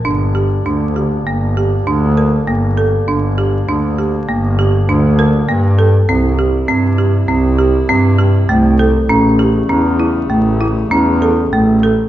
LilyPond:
<<
  \new Staff \with { instrumentName = "Marimba" } { \time 5/4 \key g \dorian \tempo 4 = 99 d'8 g'8 d'8 g'8 bes8 g'8 d'8 bes'8 bes8 a'8 | d'8 g'8 d'8 g'8 bes8 g'8 d'8 bes'8 bes8 a'8 | c'8 g'8 c'8 g'8 c'8 g'8 c'8 g'8 a8 a'8 | cis'8 g'8 cis'8 e'8 a8 e'8 cis'8 a'8 a8 a'8 | }
  \new Staff \with { instrumentName = "Woodwind section" } { \time 5/4 \key g \dorian <g bes d'>1~ <g bes d'>4~ | <g bes d'>1~ <g bes d'>4 | <c e'>1~ <c e'>4 | <cis a>1~ <cis a>4 | }
  \new Staff \with { instrumentName = "Double bass" } { \clef bass \time 5/4 \key g \dorian g,,4 d,4 g,,4 d,4 g,,4 | g,,4 d,4 g,,4 d,4 g,4 | c,4 g,4 c,4 g,4 c,4 | a,,4 e,4 a,,4 e,4 a,,4 | }
>>